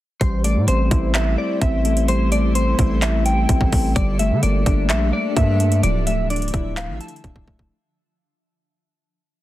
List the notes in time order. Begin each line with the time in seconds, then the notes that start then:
0.21 A1 G3 A3 E4 G4 C5, kick, closed hi-hat
0.44 A3 D5, closed hi-hat
0.56 A2
0.68 A1 C4 C5, closed hi-hat
0.91 A1 E4, kick, closed hi-hat
1.15 E5, clap, closed hi-hat
1.38 D5
1.62 A1 C4 E5, kick, closed hi-hat
1.85 A3, closed hi-hat
1.97 closed hi-hat
2.08 G3 A4 C5, closed hi-hat
2.32 A3 D5, closed hi-hat
2.55 C4 C5, closed hi-hat
2.79 A1 E4, kick, closed hi-hat
3.02 E5, clap, closed hi-hat
3.26 G5, closed hi-hat
3.49 A1 C4, kick, closed hi-hat
3.61 A1, kick
3.72 A1 A3, kick, open hi-hat
3.95 G1 G3 D4 G4 D5, kick, closed hi-hat
4.19 A3 E5, closed hi-hat
4.31 D3
4.43 G1 A#3 D5, closed hi-hat
4.66 G1 D4, kick, closed hi-hat
4.90 A#1 E5, clap, closed hi-hat
5.13 D5
5.37 G2 A#3 E5, kick, closed hi-hat
5.60 A3, closed hi-hat
5.72 closed hi-hat
5.83 D1 D3 F3 D5 E5, closed hi-hat
6.07 A3 E5, closed hi-hat
6.30 D4 D5, closed hi-hat
6.36 closed hi-hat
6.42 closed hi-hat
6.48 closed hi-hat
6.54 D1 E4, kick, closed hi-hat
6.77 F5, clap, closed hi-hat
6.89 A1
7.01 A5, closed hi-hat
7.08 closed hi-hat
7.16 closed hi-hat
7.24 D1 D4, kick, closed hi-hat
7.36 D1, kick
7.48 D1 A3, kick
7.59 D1, kick